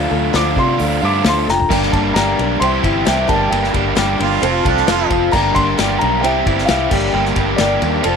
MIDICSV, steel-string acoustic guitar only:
0, 0, Header, 1, 2, 480
1, 0, Start_track
1, 0, Key_signature, -2, "minor"
1, 0, Tempo, 453172
1, 1803, Time_signature, 4, 2, 24, 8
1, 8647, End_track
2, 0, Start_track
2, 0, Title_t, "Steel-string acoustic guitar"
2, 0, Program_c, 0, 25
2, 0, Note_on_c, 0, 50, 81
2, 0, Note_on_c, 0, 53, 85
2, 0, Note_on_c, 0, 62, 91
2, 0, Note_on_c, 0, 65, 101
2, 111, Note_on_c, 0, 69, 62
2, 116, Note_off_c, 0, 65, 0
2, 117, Note_off_c, 0, 50, 0
2, 121, Note_off_c, 0, 53, 0
2, 122, Note_off_c, 0, 62, 0
2, 128, Note_on_c, 0, 65, 55
2, 148, Note_on_c, 0, 62, 49
2, 352, Note_on_c, 0, 50, 83
2, 354, Note_off_c, 0, 62, 0
2, 356, Note_off_c, 0, 69, 0
2, 357, Note_on_c, 0, 53, 80
2, 360, Note_off_c, 0, 65, 0
2, 366, Note_on_c, 0, 62, 89
2, 373, Note_on_c, 0, 65, 86
2, 374, Note_on_c, 0, 69, 91
2, 588, Note_off_c, 0, 69, 0
2, 597, Note_off_c, 0, 50, 0
2, 600, Note_off_c, 0, 53, 0
2, 600, Note_off_c, 0, 65, 0
2, 601, Note_on_c, 0, 69, 56
2, 604, Note_off_c, 0, 62, 0
2, 613, Note_on_c, 0, 65, 47
2, 630, Note_on_c, 0, 62, 43
2, 834, Note_on_c, 0, 53, 62
2, 835, Note_off_c, 0, 62, 0
2, 842, Note_off_c, 0, 65, 0
2, 842, Note_off_c, 0, 69, 0
2, 847, Note_on_c, 0, 62, 69
2, 855, Note_on_c, 0, 65, 62
2, 867, Note_on_c, 0, 69, 68
2, 1310, Note_off_c, 0, 53, 0
2, 1321, Note_off_c, 0, 62, 0
2, 1321, Note_on_c, 0, 50, 73
2, 1323, Note_on_c, 0, 53, 85
2, 1329, Note_off_c, 0, 65, 0
2, 1331, Note_off_c, 0, 69, 0
2, 1334, Note_on_c, 0, 62, 84
2, 1341, Note_on_c, 0, 65, 83
2, 1343, Note_on_c, 0, 69, 90
2, 1545, Note_off_c, 0, 69, 0
2, 1557, Note_on_c, 0, 69, 50
2, 1562, Note_off_c, 0, 50, 0
2, 1563, Note_off_c, 0, 53, 0
2, 1565, Note_off_c, 0, 65, 0
2, 1569, Note_off_c, 0, 62, 0
2, 1577, Note_on_c, 0, 65, 47
2, 1592, Note_on_c, 0, 62, 47
2, 1800, Note_off_c, 0, 69, 0
2, 1810, Note_off_c, 0, 65, 0
2, 1810, Note_on_c, 0, 43, 77
2, 1813, Note_off_c, 0, 62, 0
2, 1813, Note_on_c, 0, 50, 76
2, 1817, Note_on_c, 0, 55, 81
2, 1820, Note_on_c, 0, 58, 89
2, 1825, Note_on_c, 0, 62, 94
2, 1831, Note_on_c, 0, 67, 82
2, 2025, Note_off_c, 0, 67, 0
2, 2037, Note_on_c, 0, 67, 54
2, 2043, Note_off_c, 0, 62, 0
2, 2045, Note_off_c, 0, 58, 0
2, 2047, Note_off_c, 0, 43, 0
2, 2049, Note_off_c, 0, 50, 0
2, 2050, Note_off_c, 0, 55, 0
2, 2055, Note_on_c, 0, 62, 51
2, 2058, Note_on_c, 0, 58, 45
2, 2073, Note_on_c, 0, 55, 45
2, 2277, Note_off_c, 0, 55, 0
2, 2281, Note_off_c, 0, 67, 0
2, 2282, Note_on_c, 0, 43, 82
2, 2286, Note_off_c, 0, 58, 0
2, 2289, Note_on_c, 0, 55, 89
2, 2290, Note_off_c, 0, 62, 0
2, 2290, Note_on_c, 0, 50, 81
2, 2299, Note_on_c, 0, 58, 81
2, 2302, Note_on_c, 0, 62, 87
2, 2302, Note_on_c, 0, 67, 85
2, 2506, Note_off_c, 0, 67, 0
2, 2517, Note_off_c, 0, 62, 0
2, 2518, Note_on_c, 0, 67, 57
2, 2523, Note_off_c, 0, 43, 0
2, 2527, Note_off_c, 0, 50, 0
2, 2527, Note_off_c, 0, 55, 0
2, 2529, Note_off_c, 0, 58, 0
2, 2530, Note_on_c, 0, 62, 55
2, 2541, Note_on_c, 0, 58, 47
2, 2549, Note_on_c, 0, 55, 47
2, 2741, Note_off_c, 0, 55, 0
2, 2754, Note_on_c, 0, 55, 56
2, 2761, Note_off_c, 0, 67, 0
2, 2763, Note_off_c, 0, 58, 0
2, 2767, Note_off_c, 0, 62, 0
2, 2767, Note_on_c, 0, 60, 57
2, 2778, Note_on_c, 0, 64, 65
2, 2789, Note_on_c, 0, 67, 67
2, 2985, Note_off_c, 0, 67, 0
2, 2997, Note_on_c, 0, 67, 56
2, 2999, Note_off_c, 0, 55, 0
2, 3001, Note_off_c, 0, 64, 0
2, 3006, Note_off_c, 0, 60, 0
2, 3013, Note_on_c, 0, 64, 49
2, 3030, Note_on_c, 0, 60, 45
2, 3231, Note_on_c, 0, 48, 76
2, 3234, Note_off_c, 0, 60, 0
2, 3236, Note_off_c, 0, 64, 0
2, 3237, Note_on_c, 0, 55, 75
2, 3241, Note_off_c, 0, 67, 0
2, 3247, Note_on_c, 0, 60, 79
2, 3248, Note_on_c, 0, 64, 81
2, 3254, Note_on_c, 0, 67, 89
2, 3456, Note_off_c, 0, 67, 0
2, 3468, Note_off_c, 0, 55, 0
2, 3468, Note_on_c, 0, 67, 70
2, 3469, Note_off_c, 0, 64, 0
2, 3471, Note_off_c, 0, 60, 0
2, 3473, Note_on_c, 0, 62, 66
2, 3475, Note_on_c, 0, 58, 59
2, 3478, Note_off_c, 0, 48, 0
2, 3481, Note_on_c, 0, 55, 55
2, 3488, Note_on_c, 0, 50, 57
2, 3490, Note_on_c, 0, 43, 55
2, 3935, Note_off_c, 0, 67, 0
2, 3948, Note_off_c, 0, 62, 0
2, 3948, Note_on_c, 0, 67, 56
2, 3956, Note_off_c, 0, 58, 0
2, 3961, Note_on_c, 0, 62, 45
2, 3963, Note_off_c, 0, 55, 0
2, 3966, Note_off_c, 0, 50, 0
2, 3968, Note_off_c, 0, 43, 0
2, 3969, Note_on_c, 0, 58, 43
2, 3981, Note_on_c, 0, 55, 39
2, 4185, Note_off_c, 0, 55, 0
2, 4187, Note_on_c, 0, 43, 80
2, 4192, Note_off_c, 0, 58, 0
2, 4196, Note_off_c, 0, 67, 0
2, 4197, Note_on_c, 0, 50, 85
2, 4198, Note_off_c, 0, 62, 0
2, 4198, Note_on_c, 0, 55, 83
2, 4204, Note_on_c, 0, 58, 96
2, 4208, Note_on_c, 0, 67, 88
2, 4210, Note_on_c, 0, 62, 86
2, 4416, Note_off_c, 0, 67, 0
2, 4429, Note_on_c, 0, 67, 57
2, 4431, Note_off_c, 0, 62, 0
2, 4436, Note_off_c, 0, 43, 0
2, 4441, Note_off_c, 0, 50, 0
2, 4441, Note_off_c, 0, 55, 0
2, 4441, Note_off_c, 0, 58, 0
2, 4444, Note_on_c, 0, 62, 64
2, 4453, Note_on_c, 0, 58, 51
2, 4462, Note_on_c, 0, 55, 50
2, 4662, Note_off_c, 0, 55, 0
2, 4666, Note_on_c, 0, 53, 70
2, 4675, Note_off_c, 0, 58, 0
2, 4677, Note_off_c, 0, 67, 0
2, 4679, Note_on_c, 0, 60, 72
2, 4684, Note_off_c, 0, 62, 0
2, 4695, Note_on_c, 0, 65, 72
2, 4697, Note_on_c, 0, 69, 74
2, 4894, Note_off_c, 0, 69, 0
2, 4907, Note_on_c, 0, 69, 64
2, 4911, Note_off_c, 0, 65, 0
2, 4915, Note_off_c, 0, 53, 0
2, 4922, Note_off_c, 0, 60, 0
2, 4923, Note_on_c, 0, 65, 52
2, 4942, Note_on_c, 0, 60, 51
2, 5156, Note_off_c, 0, 69, 0
2, 5159, Note_on_c, 0, 53, 89
2, 5160, Note_off_c, 0, 60, 0
2, 5164, Note_off_c, 0, 65, 0
2, 5172, Note_on_c, 0, 60, 94
2, 5176, Note_on_c, 0, 65, 89
2, 5184, Note_on_c, 0, 69, 99
2, 5629, Note_on_c, 0, 43, 87
2, 5637, Note_on_c, 0, 50, 90
2, 5642, Note_off_c, 0, 53, 0
2, 5646, Note_on_c, 0, 55, 82
2, 5647, Note_off_c, 0, 60, 0
2, 5649, Note_off_c, 0, 65, 0
2, 5651, Note_off_c, 0, 69, 0
2, 5651, Note_on_c, 0, 58, 86
2, 5653, Note_on_c, 0, 62, 92
2, 5655, Note_on_c, 0, 67, 86
2, 5864, Note_off_c, 0, 67, 0
2, 5875, Note_off_c, 0, 62, 0
2, 5876, Note_on_c, 0, 67, 50
2, 5877, Note_off_c, 0, 43, 0
2, 5880, Note_off_c, 0, 50, 0
2, 5885, Note_off_c, 0, 55, 0
2, 5887, Note_off_c, 0, 58, 0
2, 5888, Note_on_c, 0, 62, 45
2, 5900, Note_on_c, 0, 58, 45
2, 5910, Note_on_c, 0, 55, 43
2, 6116, Note_off_c, 0, 55, 0
2, 6118, Note_on_c, 0, 43, 84
2, 6120, Note_off_c, 0, 58, 0
2, 6120, Note_off_c, 0, 67, 0
2, 6122, Note_off_c, 0, 62, 0
2, 6127, Note_on_c, 0, 50, 88
2, 6128, Note_on_c, 0, 55, 83
2, 6133, Note_on_c, 0, 58, 89
2, 6135, Note_on_c, 0, 62, 82
2, 6138, Note_on_c, 0, 67, 96
2, 6340, Note_off_c, 0, 67, 0
2, 6350, Note_off_c, 0, 62, 0
2, 6353, Note_on_c, 0, 67, 55
2, 6360, Note_off_c, 0, 43, 0
2, 6363, Note_on_c, 0, 62, 54
2, 6364, Note_off_c, 0, 58, 0
2, 6365, Note_off_c, 0, 50, 0
2, 6366, Note_off_c, 0, 55, 0
2, 6377, Note_on_c, 0, 58, 51
2, 6381, Note_on_c, 0, 55, 47
2, 6585, Note_off_c, 0, 55, 0
2, 6597, Note_on_c, 0, 55, 60
2, 6598, Note_off_c, 0, 67, 0
2, 6602, Note_off_c, 0, 58, 0
2, 6603, Note_off_c, 0, 62, 0
2, 6607, Note_on_c, 0, 60, 57
2, 6620, Note_on_c, 0, 64, 65
2, 6631, Note_on_c, 0, 67, 74
2, 6814, Note_off_c, 0, 67, 0
2, 6827, Note_on_c, 0, 67, 52
2, 6835, Note_off_c, 0, 64, 0
2, 6840, Note_off_c, 0, 55, 0
2, 6844, Note_off_c, 0, 60, 0
2, 6847, Note_on_c, 0, 64, 48
2, 6859, Note_on_c, 0, 60, 42
2, 7066, Note_off_c, 0, 60, 0
2, 7066, Note_on_c, 0, 48, 80
2, 7072, Note_on_c, 0, 55, 88
2, 7073, Note_off_c, 0, 64, 0
2, 7074, Note_off_c, 0, 67, 0
2, 7079, Note_on_c, 0, 60, 84
2, 7086, Note_on_c, 0, 64, 77
2, 7088, Note_on_c, 0, 67, 90
2, 7302, Note_off_c, 0, 67, 0
2, 7314, Note_off_c, 0, 48, 0
2, 7315, Note_on_c, 0, 67, 65
2, 7317, Note_off_c, 0, 55, 0
2, 7318, Note_off_c, 0, 64, 0
2, 7320, Note_off_c, 0, 60, 0
2, 7322, Note_on_c, 0, 62, 64
2, 7325, Note_on_c, 0, 58, 61
2, 7334, Note_on_c, 0, 55, 64
2, 7336, Note_on_c, 0, 50, 54
2, 7342, Note_on_c, 0, 43, 53
2, 7777, Note_off_c, 0, 67, 0
2, 7789, Note_off_c, 0, 62, 0
2, 7789, Note_on_c, 0, 67, 50
2, 7802, Note_off_c, 0, 58, 0
2, 7802, Note_on_c, 0, 62, 47
2, 7806, Note_off_c, 0, 55, 0
2, 7808, Note_off_c, 0, 50, 0
2, 7811, Note_off_c, 0, 43, 0
2, 7815, Note_on_c, 0, 58, 44
2, 7823, Note_on_c, 0, 55, 39
2, 8030, Note_off_c, 0, 55, 0
2, 8030, Note_on_c, 0, 43, 77
2, 8032, Note_off_c, 0, 58, 0
2, 8034, Note_off_c, 0, 67, 0
2, 8036, Note_on_c, 0, 50, 83
2, 8038, Note_off_c, 0, 62, 0
2, 8043, Note_on_c, 0, 55, 79
2, 8045, Note_on_c, 0, 58, 88
2, 8051, Note_on_c, 0, 62, 96
2, 8053, Note_on_c, 0, 67, 93
2, 8250, Note_off_c, 0, 67, 0
2, 8263, Note_on_c, 0, 67, 60
2, 8266, Note_off_c, 0, 62, 0
2, 8274, Note_off_c, 0, 43, 0
2, 8277, Note_off_c, 0, 50, 0
2, 8278, Note_off_c, 0, 58, 0
2, 8278, Note_on_c, 0, 62, 52
2, 8281, Note_off_c, 0, 55, 0
2, 8291, Note_on_c, 0, 58, 45
2, 8296, Note_on_c, 0, 55, 49
2, 8503, Note_off_c, 0, 55, 0
2, 8507, Note_on_c, 0, 53, 58
2, 8510, Note_off_c, 0, 67, 0
2, 8517, Note_off_c, 0, 58, 0
2, 8518, Note_off_c, 0, 62, 0
2, 8521, Note_on_c, 0, 60, 63
2, 8531, Note_on_c, 0, 65, 62
2, 8541, Note_on_c, 0, 69, 67
2, 8647, Note_off_c, 0, 53, 0
2, 8647, Note_off_c, 0, 60, 0
2, 8647, Note_off_c, 0, 65, 0
2, 8647, Note_off_c, 0, 69, 0
2, 8647, End_track
0, 0, End_of_file